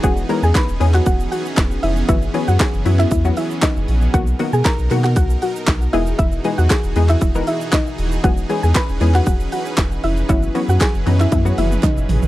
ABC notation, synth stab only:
X:1
M:4/4
L:1/16
Q:1/4=117
K:C#dor
V:1 name="Synth stab"
[E,G,B,CG] z [E,G,B,CA]3 z [E,G,B,CG]6 z4 | [E,F,B,CF] z [E,F,B,CG]3 z [E,F,B,CE]2 z [E,F,B,CF]4- [E,F,B,CF] z2 | [D,F,A,B,F] z [D,F,A,B,F]3 z [D,F,A,B,F]6 z2 [E,G,B,DG]2- | [E,G,B,DG] z [E,G,B,DG]3 z [E,G,B,DG]2 z [E,G,B,DA]4- [E,G,B,DA] z2 |
[E,G,B,CG] z [E,G,B,CG]3 z [E,G,B,CG]6 z4 | [E,F,B,CF] z [E,F,B,CF]3 z [E,F,B,CD]2 z [E,F,B,CF]4- [E,F,B,CF] z2 |]